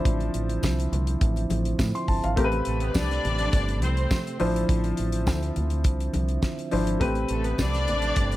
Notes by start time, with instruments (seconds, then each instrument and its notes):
Already playing: tonewheel organ D3 F3 C4 E4, grand piano F3 D4 E4 C5
0.05 fingered electric bass A1, kick, closed hi-hat, muted conga, low conga
0.20 closed hi-hat, muted conga
0.34 fingered electric bass A1, closed hi-hat
0.49 closed hi-hat
0.63 fingered electric bass C2, kick, snare, tambourine, muted conga, high conga
0.79 closed hi-hat, muted conga
0.92 fingered electric bass C2, closed hi-hat, low conga
1.07 closed hi-hat, high conga
1.21 fingered electric bass A1, kick, closed hi-hat, muted conga
1.36 closed hi-hat, muted conga
1.50 fingered electric bass A1, closed hi-hat, high conga
1.65 closed hi-hat
1.79 fingered electric bass A2, kick, snare, tambourine, muted conga, high conga
1.95 grand piano C6, closed hi-hat, muted conga
2.08 fingered electric bass G1, grand piano A5, kick, open hi-hat
2.24 fingered electric bass G#1, grand piano F5, closed hi-hat
2.36 fingered electric bass A1, tonewheel organ C3 A3 C4 G4, grand piano A3 C4 G4 A#4, kick, closed hi-hat, muted conga, low conga
2.44 grand piano B4
2.52 closed hi-hat, muted conga
2.65 fingered electric bass A1, string section A3 A4, closed hi-hat
2.80 string section B3 B4, closed hi-hat
2.94 fingered electric bass C2, string section D4 D5, kick, snare, tambourine, high conga
3.11 snare, closed hi-hat, muted conga
3.25 fingered electric bass A1, closed hi-hat, low conga
3.39 closed hi-hat, high conga
3.53 fingered electric bass G1, kick, closed hi-hat, muted conga
3.68 closed hi-hat, muted conga
3.82 fingered electric bass C2, string section C4 C5, closed hi-hat, high conga
3.97 closed hi-hat
4.10 kick, snare, tambourine, muted conga, high conga
4.27 closed hi-hat, muted conga
4.40 fingered electric bass A1, tonewheel organ D3 F3 C4 E4, grand piano F3 D4 E4 C5, open hi-hat
4.56 closed hi-hat
4.69 fingered electric bass A1, kick, closed hi-hat, low conga
4.84 closed hi-hat, muted conga
4.97 fingered electric bass A1, closed hi-hat
5.12 closed hi-hat
5.26 fingered electric bass D2, kick, snare, tambourine, high conga
5.42 closed hi-hat, muted conga
5.56 fingered electric bass D2, closed hi-hat, low conga
5.70 closed hi-hat, high conga
5.84 fingered electric bass C2, kick, closed hi-hat, muted conga
6.00 closed hi-hat
6.13 fingered electric bass C2, closed hi-hat, high conga
6.28 closed hi-hat
6.42 kick, snare, tambourine, muted conga, high conga
6.58 closed hi-hat, muted conga
6.71 fingered electric bass G#1, grand piano F3 D4 E4 C5, open hi-hat
6.87 closed hi-hat
7.00 fingered electric bass A1, tonewheel organ C3 A3 C4 G4, grand piano A3 C4 G4 B4, kick, closed hi-hat, muted conga, low conga
7.15 closed hi-hat
7.28 fingered electric bass A1, string section A3 A4, closed hi-hat
7.44 string section B3 B4, closed hi-hat
7.58 fingered electric bass C2, string section D4 D5, kick, snare, tambourine, high conga
7.74 snare, closed hi-hat, muted conga
7.88 fingered electric bass A1, closed hi-hat, low conga
8.02 closed hi-hat, high conga
8.16 fingered electric bass G1, kick, closed hi-hat, muted conga
8.32 closed hi-hat, muted conga